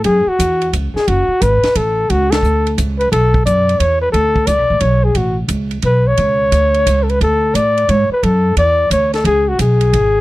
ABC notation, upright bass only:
X:1
M:3/4
L:1/8
Q:"Swing" 1/4=176
K:F#m
V:1 name="Upright bass" clef=bass
F,, z E,,2 C,, z | F,,, z G,,, z A,,,2 | C,,2 D,,2 C,,2 | B,,,2 F,,2 E,,2 |
D,,2 (3C,, B,,, A,,, B,,,2 | A,,,2 C,,2 B,,,2 | C,,2 D,,2 C,,2 | D,,2 A,,2 G,, z |
F,,2 E,,2 D,,2 | C,,2 B,,,2 G,,,2 |]